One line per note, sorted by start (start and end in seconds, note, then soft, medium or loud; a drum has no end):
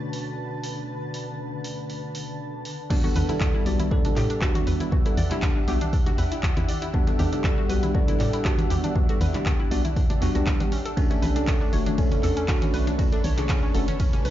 0.00 2.62 B2 medium
0.00 2.90 D3 medium
0.00 2.62 A3 medium
0.00 2.63 C#4 medium
0.00 2.63 D4 medium
0.00 2.63 F#4 medium
0.00 4.51 B4 medium
0.00 4.43 A5 medium
0.13 open hi-hat medium
0.64 open hi-hat medium
1.14 open hi-hat loud
1.64 open hi-hat medium
1.90 open hi-hat medium
2.15 open hi-hat medium
2.65 open hi-hat loud
2.90 3.00 G3 loud
2.90 3.00 B3 medium
2.90 2.94 D4 medium
2.90 14.30 D4 medium
2.90 3.01 D4 medium
2.90 3.01 F#4 loud
2.90 kick loud
2.90 crash loud
3.03 3.26 G3 medium
3.03 3.26 B3 medium
3.03 3.26 D4 medium
3.03 3.07 F#4 loud
3.03 3.26 A4 loud
3.03 12.72 E5 medium
3.03 closed hi-hat soft
3.03 muted conga medium
3.11 10.72 G4 medium
3.16 3.63 E2 loud
3.16 3.20 B4 loud
3.16 open hi-hat loud
3.16 high conga loud
3.28 3.63 G3 medium
3.28 3.63 B3 medium
3.28 3.63 D4 medium
3.28 3.33 E4 medium
3.28 3.63 A4 medium
3.28 closed hi-hat medium
3.28 low conga medium
3.40 3.47 F#4 medium
3.40 11.81 F#5 medium
3.40 kick loud
3.40 clap loud
3.54 3.63 E4 loud
3.66 4.13 B1 medium
3.66 3.88 G3 medium
3.66 3.88 B3 medium
3.66 3.89 D4 medium
3.66 3.89 F#4 medium
3.66 3.76 D5 medium
3.66 open hi-hat loud
3.80 3.85 E4 medium
3.80 closed hi-hat medium
3.80 high conga medium
3.91 4.39 G3 medium
3.91 4.39 B3 medium
3.91 3.98 D4 medium
3.91 4.39 D4 medium
3.91 4.39 A4 loud
3.91 kick loud
4.05 4.08 D4 medium
4.05 closed hi-hat medium
4.05 low conga loud
4.16 4.27 A2 loud
4.16 4.20 G4 loud
4.16 clap soft
4.16 open hi-hat loud
4.30 4.38 D4 medium
4.30 closed hi-hat medium
4.41 4.89 G3 loud
4.41 4.89 B3 medium
4.41 4.89 D4 medium
4.41 4.46 D4 medium
4.41 4.90 F#4 loud
4.41 kick loud
4.41 clap loud
4.55 4.59 F#4 loud
4.55 closed hi-hat medium
4.55 high conga medium
4.67 5.14 E2 medium
4.67 4.71 B4 loud
4.67 open hi-hat loud
4.80 4.84 E4 medium
4.80 closed hi-hat medium
4.80 muted conga medium
4.92 5.02 G3 medium
4.92 5.02 B3 medium
4.92 5.02 D4 medium
4.92 4.99 F#4 medium
4.92 5.03 F#4 loud
4.92 kick loud
5.05 5.14 G3 medium
5.05 5.14 B3 medium
5.05 5.15 D4 medium
5.05 5.14 E4 loud
5.05 5.15 A4 medium
5.05 closed hi-hat soft
5.17 5.64 E2 loud
5.17 5.27 D5 medium
5.17 open hi-hat loud
5.17 high conga loud
5.30 5.65 G3 medium
5.30 5.65 B3 medium
5.30 5.65 D4 medium
5.30 5.36 E4 medium
5.30 5.65 G4 medium
5.30 clap soft
5.30 closed hi-hat medium
5.30 low conga medium
5.42 5.49 D4 medium
5.42 kick loud
5.42 clap loud
5.56 5.59 D4 medium
5.67 6.15 B1 medium
5.67 5.78 G3 medium
5.67 5.78 B3 medium
5.67 5.78 D4 medium
5.67 5.78 F#4 loud
5.67 5.72 G4 loud
5.67 open hi-hat loud
5.81 5.90 D4 medium
5.81 closed hi-hat medium
5.81 high conga medium
5.93 5.97 D4 medium
5.93 kick loud
5.93 open hi-hat medium
6.06 6.10 F#4 loud
6.06 closed hi-hat medium
6.06 low conga loud
6.18 6.53 E2 medium
6.18 6.22 B4 loud
6.18 open hi-hat loud
6.32 6.35 E4 medium
6.32 closed hi-hat medium
6.43 6.50 F#4 medium
6.43 kick loud
6.43 clap loud
6.57 7.16 E2 medium
6.57 6.65 E4 loud
6.57 closed hi-hat medium
6.57 high conga loud
6.69 6.78 D5 medium
6.69 open hi-hat loud
6.82 6.88 E4 medium
6.82 closed hi-hat medium
6.93 7.04 G3 loud
6.93 7.04 B3 medium
6.93 7.00 D4 medium
6.93 7.04 D4 loud
6.93 7.04 F#4 loud
6.93 kick loud
7.07 7.29 G3 loud
7.07 7.29 B3 medium
7.07 7.11 D4 medium
7.07 7.29 D4 medium
7.07 7.30 A4 loud
7.07 closed hi-hat soft
7.07 muted conga medium
7.19 7.66 E2 loud
7.19 7.23 G4 loud
7.19 open hi-hat loud
7.19 high conga loud
7.32 7.66 G3 medium
7.32 7.67 B3 medium
7.32 7.41 D4 medium
7.32 7.67 D4 medium
7.32 7.67 A4 medium
7.32 closed hi-hat medium
7.32 low conga medium
7.44 7.48 D4 medium
7.44 kick loud
7.44 clap loud
7.58 7.61 F#4 loud
7.69 8.16 B1 loud
7.69 7.92 G3 medium
7.69 7.92 B3 medium
7.69 7.92 D4 medium
7.69 7.92 F#4 medium
7.69 7.73 B4 loud
7.69 open hi-hat loud
7.83 7.86 E4 medium
7.83 closed hi-hat medium
7.83 high conga medium
7.94 8.42 G3 medium
7.94 8.42 B3 medium
7.94 8.42 D4 medium
7.94 8.01 F#4 medium
7.94 8.43 A4 loud
7.94 kick loud
8.08 8.17 E4 loud
8.08 closed hi-hat medium
8.08 low conga medium
8.20 8.31 A2 loud
8.20 8.29 D5 medium
8.20 clap soft
8.20 open hi-hat loud
8.33 8.39 E4 medium
8.33 closed hi-hat medium
8.45 8.92 G3 loud
8.45 8.93 B3 medium
8.45 8.52 D4 medium
8.45 8.93 D4 medium
8.45 8.93 F#4 loud
8.45 kick loud
8.45 clap loud
8.58 8.62 D4 medium
8.58 closed hi-hat medium
8.58 high conga medium
8.70 9.17 E2 medium
8.70 8.74 G4 loud
8.70 open hi-hat loud
8.84 8.92 D4 medium
8.84 closed hi-hat medium
8.84 muted conga medium
8.95 9.06 G3 medium
8.95 9.06 B3 medium
8.95 8.99 D4 medium
8.95 9.06 D4 medium
8.95 9.06 F#4 medium
8.95 kick loud
9.09 9.18 G3 medium
9.09 9.18 B3 medium
9.09 9.18 D4 medium
9.09 9.12 F#4 loud
9.09 9.18 A4 medium
9.09 closed hi-hat soft
9.21 9.68 E2 loud
9.21 9.25 B4 loud
9.21 open hi-hat loud
9.21 high conga loud
9.34 9.68 G3 medium
9.34 9.68 B3 medium
9.34 9.68 D4 medium
9.34 9.38 E4 medium
9.34 9.69 G4 medium
9.34 clap soft
9.34 closed hi-hat medium
9.34 low conga medium
9.46 9.52 F#4 medium
9.46 kick loud
9.46 clap loud
9.60 9.68 E4 loud
9.71 10.18 B1 medium
9.71 9.81 G3 loud
9.71 9.81 B3 medium
9.71 9.81 D4 medium
9.71 9.82 F#4 loud
9.71 9.81 D5 medium
9.71 open hi-hat loud
9.85 9.90 E4 medium
9.85 closed hi-hat medium
9.85 high conga medium
9.96 10.03 D4 medium
9.96 kick loud
9.96 open hi-hat medium
10.10 10.13 D4 medium
10.10 closed hi-hat medium
10.10 low conga medium
10.21 10.33 E2 loud
10.21 10.33 G3 loud
10.21 10.33 B3 medium
10.21 10.33 D4 medium
10.21 10.31 F#4 medium
10.21 10.33 F#4 loud
10.21 open hi-hat loud
10.35 10.45 B1 loud
10.35 10.70 G3 medium
10.35 10.71 B3 medium
10.35 10.71 D4 medium
10.35 10.38 F#4 medium
10.35 10.71 G4 medium
10.35 closed hi-hat medium
10.47 10.53 E4 medium
10.47 kick loud
10.47 clap loud
10.60 10.66 D4 medium
10.60 closed hi-hat soft
10.60 high conga loud
10.72 10.82 C#4 medium
10.72 open hi-hat loud
10.83 10.91 A4 medium
10.83 14.30 C#5 medium
10.83 closed hi-hat medium
10.94 11.07 A3 loud
10.94 11.07 C#4 medium
10.94 11.01 C#4 medium
10.94 11.07 D4 medium
10.94 11.08 F#4 loud
10.94 14.30 B4 medium
10.94 kick loud
10.94 ride medium
11.10 11.32 A3 loud
11.10 11.33 C#4 medium
11.10 11.19 C#4 medium
11.10 11.33 D4 medium
11.10 11.33 A4 loud
11.10 closed hi-hat soft
11.10 muted conga medium
11.22 11.69 B1 loud
11.22 11.26 B4 loud
11.22 open hi-hat loud
11.22 high conga loud
11.35 11.70 A3 medium
11.35 11.70 C#4 medium
11.35 11.39 D4 medium
11.35 11.70 D4 medium
11.35 11.70 A4 medium
11.35 closed hi-hat medium
11.35 low conga medium
11.43 14.30 A4 medium
11.47 11.54 F#4 medium
11.47 kick loud
11.47 clap loud
11.47 ride medium
11.61 11.69 D4 loud
11.72 12.20 F#1 medium
11.72 11.95 A3 medium
11.72 11.95 C#4 medium
11.72 11.95 D4 medium
11.72 11.96 F#4 medium
11.72 11.82 C#5 medium
11.72 open hi-hat loud
11.86 11.92 D4 medium
11.86 closed hi-hat medium
11.86 high conga medium
11.98 12.45 A3 medium
11.98 12.46 C#4 medium
11.98 12.04 C#4 medium
11.98 12.46 D4 medium
11.98 12.46 A4 loud
11.98 kick loud
11.98 ride medium
12.12 12.15 C#4 medium
12.12 closed hi-hat soft
12.12 low conga medium
12.23 12.34 E2 loud
12.23 12.27 A4 loud
12.23 clap soft
12.23 open hi-hat loud
12.37 12.45 C#4 medium
12.37 closed hi-hat medium
12.48 12.96 A3 medium
12.48 12.96 C#4 medium
12.48 12.52 C#4 medium
12.48 12.96 D4 medium
12.48 12.96 F#4 loud
12.48 kick loud
12.48 clap loud
12.48 ride medium
12.62 12.70 C#4 medium
12.62 closed hi-hat medium
12.62 high conga medium
12.74 13.21 B1 medium
12.74 12.78 B4 loud
12.74 open hi-hat loud
12.87 12.91 D4 medium
12.87 closed hi-hat medium
12.87 muted conga medium
12.98 13.09 A3 medium
12.98 13.09 C#4 medium
12.98 13.09 D4 medium
12.98 13.05 F#4 medium
12.98 13.09 F#4 medium
12.98 kick loud
12.98 ride medium
13.12 13.21 A3 medium
13.12 13.21 C#4 medium
13.12 13.21 D4 loud
13.12 13.21 D4 medium
13.12 13.21 A4 medium
13.12 closed hi-hat soft
13.24 13.71 B1 loud
13.24 13.34 C#5 medium
13.24 open hi-hat loud
13.24 high conga medium
13.37 13.72 A3 medium
13.37 13.72 C#4 medium
13.37 13.43 D4 medium
13.37 13.72 D4 medium
13.37 13.72 G#4 medium
13.37 clap soft
13.37 closed hi-hat medium
13.37 low conga medium
13.49 13.56 C#4 medium
13.49 kick loud
13.49 clap loud
13.49 ride medium
13.63 13.66 C#4 medium
13.74 14.21 F#1 medium
13.74 13.84 A3 medium
13.74 13.85 C#4 medium
13.74 13.85 D4 medium
13.74 13.85 F#4 loud
13.74 13.78 A4 loud
13.74 open hi-hat loud
13.88 13.96 C#4 medium
13.88 closed hi-hat medium
13.88 high conga medium
14.00 14.04 C#4 medium
14.00 kick loud
14.00 open hi-hat medium
14.00 ride medium
14.13 14.22 C#4 medium
14.13 closed hi-hat soft
14.13 low conga loud
14.25 14.30 B1 medium
14.25 14.29 B4 loud
14.25 open hi-hat loud